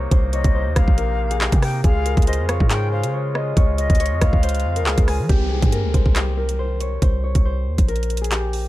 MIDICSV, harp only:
0, 0, Header, 1, 2, 480
1, 0, Start_track
1, 0, Tempo, 431655
1, 128, Time_signature, 4, 2, 24, 8
1, 9654, End_track
2, 0, Start_track
2, 0, Title_t, "Harp"
2, 0, Program_c, 0, 46
2, 0, Note_on_c, 0, 67, 87
2, 0, Note_on_c, 0, 70, 76
2, 0, Note_on_c, 0, 73, 76
2, 126, Note_on_c, 0, 72, 88
2, 193, Note_off_c, 0, 73, 0
2, 368, Note_on_c, 0, 73, 84
2, 435, Note_off_c, 0, 72, 0
2, 608, Note_on_c, 0, 72, 83
2, 675, Note_off_c, 0, 73, 0
2, 1083, Note_off_c, 0, 70, 0
2, 1087, Note_on_c, 0, 70, 89
2, 1456, Note_on_c, 0, 68, 85
2, 1522, Note_off_c, 0, 67, 0
2, 1568, Note_on_c, 0, 67, 84
2, 1634, Note_off_c, 0, 68, 0
2, 2047, Note_on_c, 0, 68, 113
2, 2114, Note_off_c, 0, 67, 0
2, 2284, Note_off_c, 0, 70, 0
2, 2289, Note_on_c, 0, 70, 87
2, 2524, Note_off_c, 0, 72, 0
2, 2529, Note_on_c, 0, 72, 90
2, 2767, Note_on_c, 0, 73, 81
2, 2834, Note_off_c, 0, 72, 0
2, 3002, Note_off_c, 0, 68, 0
2, 3006, Note_on_c, 0, 68, 90
2, 3248, Note_on_c, 0, 72, 75
2, 3315, Note_off_c, 0, 73, 0
2, 3487, Note_on_c, 0, 73, 81
2, 3553, Note_off_c, 0, 72, 0
2, 3727, Note_on_c, 0, 75, 78
2, 3963, Note_off_c, 0, 73, 0
2, 3967, Note_on_c, 0, 73, 88
2, 4202, Note_off_c, 0, 75, 0
2, 4207, Note_on_c, 0, 75, 79
2, 4444, Note_off_c, 0, 73, 0
2, 4448, Note_on_c, 0, 73, 86
2, 4647, Note_off_c, 0, 70, 0
2, 4927, Note_on_c, 0, 72, 87
2, 4994, Note_off_c, 0, 73, 0
2, 5294, Note_on_c, 0, 70, 86
2, 5402, Note_off_c, 0, 68, 0
2, 5407, Note_on_c, 0, 68, 78
2, 5886, Note_on_c, 0, 67, 107
2, 5953, Note_off_c, 0, 68, 0
2, 6127, Note_on_c, 0, 68, 88
2, 6190, Note_off_c, 0, 75, 0
2, 6193, Note_off_c, 0, 67, 0
2, 6362, Note_off_c, 0, 70, 0
2, 6366, Note_on_c, 0, 70, 85
2, 6602, Note_off_c, 0, 72, 0
2, 6607, Note_on_c, 0, 72, 72
2, 6847, Note_on_c, 0, 67, 86
2, 6913, Note_off_c, 0, 68, 0
2, 7084, Note_off_c, 0, 70, 0
2, 7088, Note_on_c, 0, 70, 75
2, 7323, Note_off_c, 0, 72, 0
2, 7328, Note_on_c, 0, 72, 80
2, 7568, Note_on_c, 0, 73, 73
2, 7635, Note_off_c, 0, 72, 0
2, 7807, Note_on_c, 0, 72, 86
2, 7874, Note_off_c, 0, 73, 0
2, 8048, Note_on_c, 0, 73, 80
2, 8114, Note_off_c, 0, 72, 0
2, 8287, Note_on_c, 0, 72, 77
2, 8354, Note_off_c, 0, 73, 0
2, 8762, Note_off_c, 0, 70, 0
2, 8766, Note_on_c, 0, 70, 86
2, 9134, Note_on_c, 0, 68, 82
2, 9201, Note_off_c, 0, 67, 0
2, 9246, Note_on_c, 0, 67, 82
2, 9313, Note_off_c, 0, 68, 0
2, 9654, Note_off_c, 0, 67, 0
2, 9654, Note_off_c, 0, 70, 0
2, 9654, Note_off_c, 0, 72, 0
2, 9654, End_track
0, 0, End_of_file